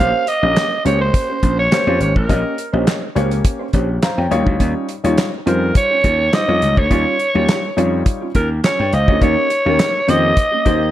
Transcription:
Already playing: C#4 F5
0.00 A#1 A#3 C#4 G4 C5
0.27 D#5, muted clean electric guitar stroke, closed hi-hat
0.42 A#1 A#3 C#4 G4 C5 D#5
0.56 snare, clap, closed hi-hat
0.71 muted clean electric guitar stroke
0.85 C#2 A#3 C#4 G4 C5 C#5, closed hi-hat
1.01 C5
1.14 muted clean electric guitar stroke, kick, closed hi-hat
1.29 C#4 G4 C5
1.42 A#1 C#4 G4 C5, kick, closed hi-hat
1.58 C#5, muted clean electric guitar stroke
1.71 A#3 C#4 G4 C5, muted clean electric guitar stroke, snare, clap, closed hi-hat
1.86 F2 A#3 C#4 G4 C5 C#5
2.00 G#1 C#4 G4 C5 C#5, closed hi-hat
2.15 A1 A#4, muted clean electric guitar stroke, kick
2.29 A#1 A#3 C#4 G4 C#5 D#5, kick, closed hi-hat
2.58 muted clean electric guitar stroke, closed hi-hat
2.73 A#1 A#3 C#4 G4 C5 D#5
2.87 snare, clap, closed hi-hat
3.02 muted clean electric guitar stroke
3.15 C#2 A#3 C#4 G4 C5 C#5, closed hi-hat
3.31 muted clean electric guitar stroke, closed hi-hat
3.44 muted clean electric guitar stroke, kick, closed hi-hat
3.59 C#4 G4 C5
3.73 A#1 C#4 G4 C5 C#5, kick, closed hi-hat
3.88 muted clean electric guitar stroke
4.02 C5 F5 A#5, snare, clap, closed hi-hat
4.17 F2 C#5 G5, muted clean electric guitar stroke
4.31 D#2 F#3 C#4 D#4 F4 G4 C#5 F5, closed hi-hat
4.37 G3
4.46 D2, muted clean electric guitar stroke, kick
4.59 D#2 C#4 F4 G4, kick, closed hi-hat
4.89 muted clean electric guitar stroke, closed hi-hat
5.04 D#2 G3 C#4 D#4 F4 G4 C#5, closed hi-hat
5.18 snare, clap, closed hi-hat
5.32 muted clean electric guitar stroke
5.46 F2 G3 C#4 D#4 F4 G4 A#4 C5, closed hi-hat
5.62 muted clean electric guitar stroke
5.75 C#5, muted clean electric guitar stroke, kick, closed hi-hat
5.90 C#4 F4 G4
6.04 D#2 C#4 F4 G4, kick, closed hi-hat
6.19 muted clean electric guitar stroke
6.33 G3 D#4 F4 C5 D#5, muted clean electric guitar stroke, snare, clap, closed hi-hat
6.48 F2 G3 C#4 D#4 F4 A#4 C#5
6.61 C#2 C#4 F4 G4, closed hi-hat
6.77 D2 C#5, muted clean electric guitar stroke, kick
6.90 D#2 G3 C#4 D#4 F4 A#4 C#5, kick, closed hi-hat
7.19 muted clean electric guitar stroke, closed hi-hat
7.34 D#2 G3 C#4 D#4 F4 G4
7.48 snare, clap, closed hi-hat
7.63 muted clean electric guitar stroke
7.77 F2 G3 C#4 D#4 F4 G4 C#5, closed hi-hat
7.92 muted clean electric guitar stroke
8.06 muted clean electric guitar stroke, kick, closed hi-hat
8.21 C#4 F4 G4
8.34 D#2 C#4 F4 G4 A#4, kick, closed hi-hat
8.51 muted clean electric guitar stroke
8.63 C#4 F4 G4 C#5, snare, clap, closed hi-hat
8.79 G2 C#5 G5, muted clean electric guitar stroke
8.93 C#2 C5 D#5 F5, muted clean electric guitar stroke, closed hi-hat
9.07 D2 C#4 F4 G4 C#5, kick
9.21 D#2 A#3 C#4 D#4 G4 C#5, kick, closed hi-hat
9.50 muted clean electric guitar stroke, closed hi-hat
9.65 D#2 D#3 A#3 C#4 D#4 G4 A#4
9.79 snare, clap, closed hi-hat
9.95 muted clean electric guitar stroke
10.07 F2 D#3 A#3 C#4 D#4 G4 C5 D#5, closed hi-hat
10.23 muted clean electric guitar stroke
10.36 muted clean electric guitar stroke, kick, closed hi-hat
10.52 A#3 C#4 G4
10.65 D#2 A#3 C#4 D#4 G4 C5, kick, closed hi-hat
10.81 muted clean electric guitar stroke

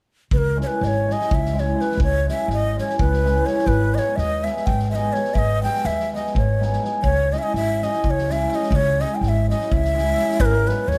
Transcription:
0.31 C#2 B4, kick
0.38 A#4
0.56 G#3 C#4 E4 G#4
0.60 C#5, snare
0.67 B4
0.81 G#1 D#5, snare
0.87 C#5
1.06 G#3 C#4 E4 G#4, snare
1.12 D#5
1.21 snare
1.31 C#2 E5, kick
1.45 snare
1.53 G#3 C#4 E4 G#4, snare
1.60 C#5
1.75 G#3 C#4 E4 G#4
1.80 B4, snare
1.91 snare
1.97 C#2, kick
2.03 C#5
2.27 G#3 C#4 E4 G#4 E5, snare
2.48 G#1, snare
2.53 D#5
2.76 G#3 C#4 E4 G#4 C#5, snare
2.89 snare
2.99 C#2 B4, kick
3.13 snare
3.24 G#3 C#4 E4 G#4, snare
3.45 G#3 C#4 E4 G#4 C#5, snare
3.58 snare
3.66 G#1 B4, kick
3.94 G#3 B3 D#4 G#4 D#5, snare
3.99 C#5
4.16 D#2 D#5 E5, snare
4.43 G#3 B3 D#4 G#4 E5, snare
4.57 snare
4.66 G#1 G5, kick
4.79 snare
4.91 G#3 B3 D#4 G#4 E5, snare
4.95 D#5
5.12 G#3 B3 D#4 G#4 C#5, snare
5.25 snare
5.34 G#1 E5, kick
5.38 D#5
5.62 G#3 B3 D#4 G#4 G5, snare
5.75 snare
5.85 D#2 E5, snare
6.00 snare
6.12 G#3 B3 D#4 G#4 D#5, snare
6.26 snare
6.35 G#1 C#5, kick
6.60 G#3 B3 D#4 G#4, snare
6.73 snare
6.80 G#3 B3 D#4 G#4, snare
7.02 C#2 C#5, kick
7.32 G#3 C#4 E4 G#4 D#5, snare
7.38 E5
7.43 D#5
7.54 G#1 E5, snare
7.82 G#3 C#4 E4 G#4 D#5, snare
7.93 snare
8.04 C#2 D#5, kick
8.10 C#5
8.18 snare
8.29 G#3 C#4 E4 G#4 E5, snare
8.50 G#3 C#4 E4 G#4 E5, snare
8.55 D#5
8.63 snare
8.70 C#2 D#5, kick
8.75 C#5
8.99 G#3 C#4 E4 G#4 D#5, snare
9.15 G5
9.21 G#1 G5, snare
9.28 E5
9.47 G#3 C#4 E4 G#4 D#5, snare
9.60 snare
9.72 C#2 E5, kick
9.84 snare
9.94 G#3 C#4 E4 G#4
9.98 snare
10.16 G#3 C#4 E4 G#4, snare
10.31 snare
10.40 G#1 B4, kick
10.45 A#4
10.66 G#3 B3 D#4 G#4 B4, snare
10.88 D#2 C#5, snare

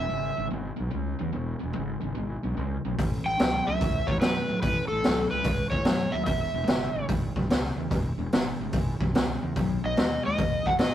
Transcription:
Already playing: E5
0.10 G#1 E2 C#3
0.37 G#1 E2 C#3
0.51 G#1 E2 B2
0.76 B1 E2 B2
0.91 C#2 E2 C#3
1.19 E2 C#3
1.33 E1 E2 B2
1.60 E1 E2 B2
1.74 G#1 E2 C#3
2.01 G#1 E2 C#3
2.15 G#1 E2 B2
2.43 B1 E2 B2
2.57 C#2 E2 C#3
2.85 B1 E2 C#3
2.99 A1 A2 E3, kick, open hi-hat
3.26 A1 A2 E3 G5
3.39 C#2 A2 F#3, snare, open hi-hat
3.67 C#2 A2 F#3 E5
3.81 C#2 A2 E3, kick, open hi-hat
4.07 E2 A2 E3 C#5, kick
4.21 F#2 A2 F#3 B4, snare, open hi-hat
4.50 A2 F#3
4.62 A1 A2 E3 B4, kick, open hi-hat
4.88 A1 A2 E3 A4
5.04 C#2 A2 F#3, snare, open hi-hat
5.31 C#2 A2 F#3 B4
5.44 C#2 A2 E3, kick, open hi-hat
5.70 E2 A2 E3 C#5, kick
5.85 F#2 A2 F#3, snare, open hi-hat
6.12 D#2 A2 F#3 E5
6.26 E1 E2 B2 E5, kick, open hi-hat
6.54 E1 E2 B2
6.67 G#1 E2 C#3, snare, open hi-hat
6.95 G#1 E2 C#3
7.08 G#1 E2 B2, kick, open hi-hat
7.36 B1 E2 B2, kick
7.50 C#2 E2 C#3, snare, open hi-hat
7.65 snare
7.76 E2 C#3
7.91 E1 E2 B2, kick, open hi-hat
8.18 E1 E2 B2
8.32 G#1 E2 C#3, snare, open hi-hat
8.59 G#1 E2 C#3
8.73 G#1 E2 B2, kick, open hi-hat
9.00 B1 E2 B2, kick
9.15 C#2 E2 C#3, snare, open hi-hat
9.42 E2 C#3
9.56 B1 B2 F#3, kick, open hi-hat
9.84 B1 B2 F#3 D#5
9.96 D#2 B2 G#3, snare, open hi-hat
10.24 D#2 B2 G#3 D#5
10.37 D#2 B2 F#3, kick, open hi-hat
10.66 F#2 B2 F#3 F#5, kick
10.79 G#2 B2 G#3 D#5, snare, open hi-hat

